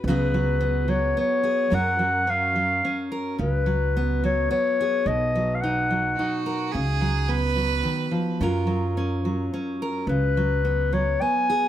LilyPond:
<<
  \new Staff \with { instrumentName = "Clarinet" } { \time 3/4 \key cis \mixolydian \tempo 4 = 108 b'4. cis''8 cis''4 | fis''4 eis''4. r8 | b'4. cis''8 cis''4 | dis''8.~ dis''32 eis''32 fis''4. r8 |
r2. | r2. | b'4. cis''8 gis''4 | }
  \new Staff \with { instrumentName = "Fiddle" } { \time 3/4 \key cis \mixolydian r2. | r2. | r2. | r2 fis'4 |
gis'4 b'2 | r2. | r2. | }
  \new Staff \with { instrumentName = "Steel-string acoustic guitar" } { \time 3/4 \key cis \mixolydian << { <fis b fis' gis'>4 b4 b8 gis'8 | <fis cis' fis' ais'>4 cis'4 cis'8 ais'8 | r4 b4 b8 gis'8 | r4 dis'4 dis'8 ais'8 |
r4 b2 | <fis cis' eis' ais'>4 cis'4 cis'8 ais'8 | r4 b4 b8 gis'8 | } \\ { cis8 fis4 fis4. | fis,8 fis4 fis4. | cis8 fis4 fis4. | b,8 fis4 fis4. |
cis8 fis4 fis8 dis8 eis8 | fis,8 fis4 fis4. | cis8 fis4 fis4. | } >> }
  \new Staff \with { instrumentName = "Upright bass" } { \clef bass \time 3/4 \key cis \mixolydian cis,2 r4 | fis,2 r4 | cis,2 r4 | b,,2 r4 |
cis,2 r4 | fis,2 r4 | cis,2 r4 | }
>>